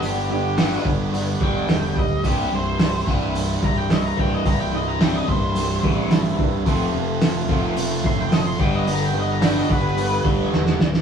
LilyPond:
<<
  \new Staff \with { instrumentName = "Lead electric guitar" } { \time 4/4 \key c \major \tempo 4 = 109 g'8 g'4 r4 g''4 ees''8 | g'8 c''4 r4 bes''16 g''16 ees''16 bes''16 g''16 ees''16 | bes''16 g''16 ees''16 bes''16 g''16 ees''16 c''4 r4. | r2 r8 c'''16 g''16 ees''16 c'''16 g''16 ees''16 |
bes''16 g''16 ees''16 bes''16 g''16 ees''16 b'4 r4. | }
  \new Staff \with { instrumentName = "Tonewheel organ" } { \time 4/4 \key c \major <b g' d''>1 | c'1 | <c' g'>1 | <a g' f''>2.~ <a g' f''>8 <b g' d''>8~ |
<b g' d''>1 | }
  \new Staff \with { instrumentName = "Distorted electric guitar" } { \clef bass \time 4/4 \key c \major <g, d g b d' g'>4 <g, d g b d' g'>2~ <g, d g b d' g'>8 r8 | <c, g, c g e'>4. <c, g, c g e'>2~ <c, g, c g e'>8 | <c, g, c g e'>4. <c, g, c g e'>2~ <c, g, c g e'>8 | <f, c f a c' f'>4. <f, c f a c' f'>2 <g, d g b d' g'>8~ |
<g, d g b d' g'>4 <g, d g b d' g'>2~ <g, d g b d' g'>8 r8 | }
  \new Staff \with { instrumentName = "Overdriven electric guitar" } { \clef bass \time 4/4 \key c \major <g, d>8 <g, d>8 <g, d g>8 <g, d>8 <g, d>8 <g, d g>8 <g, d>8 <g, d>8 | <c, g, c>8 <c, g,>8 <c, g,>8 <c, g, c>8 <c, g,>8 <c, g,>8 <c, g,>8 <c, g, c>8 | <c, g,>8 <c, g,>8 <c, g, c>8 <c, g,>8 <c, g,>8 <c, g, c>8 <c, g,>8 <c, g,>8 | <f, c f>8 <f, c>8 <f, c>8 <f, c f>8 <f, c>8 <f, c>8 <f, c>8 <g, d g>8 |
<g, d>8 <g, d>8 <g, d g>8 <g, d>8 <g, d>8 <g, d g>8 <g, d>8 <g, d>8 | }
  \new Staff \with { instrumentName = "Fingered electric bass" } { \clef bass \time 4/4 \key c \major g,,4. g,,4 f,,8 e,,8 d,,8 | c,,8 c,,4 c,,4 c,,4 c,,8 | c,,4. c,,4 a,,4 c,8 | f,,8 f,,4 f,,4 fis,,4 g,,8 |
g,,4. g,,4 f,,8 e,,8 d,,8 | }
  \new DrumStaff \with { instrumentName = "Drums" } \drummode { \time 4/4 hho4 <hho sn>8 bd8 hho8 bd8 <hho sn>8 bd8 | <hho bd>4 <hho sn>8 bd8 hho8 bd8 <hho sn>8 bd8 | <hho bd>4 <hho sn>8 bd8 hho8 bd8 <hho sn>8 bd8 | <hho bd>4 <hho sn>8 bd8 hho8 bd8 <hho sn>8 bd8 |
hho4 <hho sn>8 bd8 hho8 bd8 sn16 sn16 sn16 sn16 | }
>>